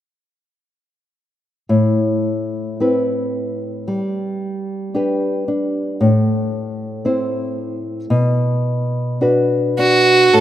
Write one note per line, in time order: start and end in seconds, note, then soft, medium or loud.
1.69 3.98 A2 medium
2.80 3.98 C4 soft
2.80 3.98 E4 soft
2.80 4.95 B4 soft
3.88 6.10 G3 medium
4.94 5.47 D4 soft
4.94 6.10 G4 soft
4.94 6.11 B4 soft
5.48 6.10 D4 soft
6.01 8.10 A2 medium
7.05 8.21 C4 soft
7.05 8.21 E4 soft
7.05 8.21 C5 soft
8.10 10.33 B2 medium
9.21 9.77 D4 soft
9.21 10.40 F#4 soft
9.21 10.40 B4 soft
9.79 10.40 D4 soft
9.79 10.35 F#4 medium
10.33 10.40 A2 soft
10.33 10.40 A4 medium